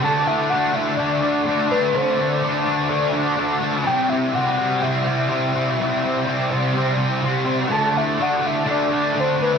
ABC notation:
X:1
M:4/4
L:1/8
Q:1/4=125
K:Dmix
V:1 name="Soft synth lead"
a e f e d3 B | c2 z6 | g e f2 e4- | e6 z2 |
a e f e d2 c B |]
V:2 name="Distorted electric guitar"
[D,A,D] [A,D] [D,A,D] [A,D] [D,A,D] [A,D] [D,A,D] [A,D] | [D,A,D] [A,D] [D,A,D] [A,D] [D,A,D] [A,D] [D,A,D] [A,D] | [C,G,C] [G,C] [C,G,C] [G,C] [C,G,C] [G,C] [C,G,C] [G,C] | [C,G,C] [G,C] [C,G,C] [G,C] [C,G,C] [G,C] [C,G,C] [G,C] |
[D,A,D] [A,D] [D,A,D] [A,D] [D,A,D] [A,D] [D,A,D] [A,D] |]